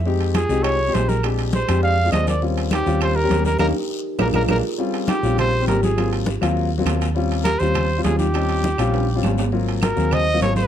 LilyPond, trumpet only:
\new Staff \with { instrumentName = "Trumpet" } { \time 4/4 \key ees \mixolydian \tempo 4 = 203 r4 aes'4 des''4 c''8 bes'8 | r4 c''4 f''4 ees''8 d''8 | r4 g'4 c''8 bes'4 bes'8 | bes'8 r4. bes'8 bes'8 bes'8 r8 |
r4 g'4 c''4 bes'8 aes'8~ | aes'8 r2. r8 | r4 bes'8 c''4. aes'8 g'8~ | g'2.~ g'8 r8 |
r4 bes'4 ees''4 des''8 c''8 | }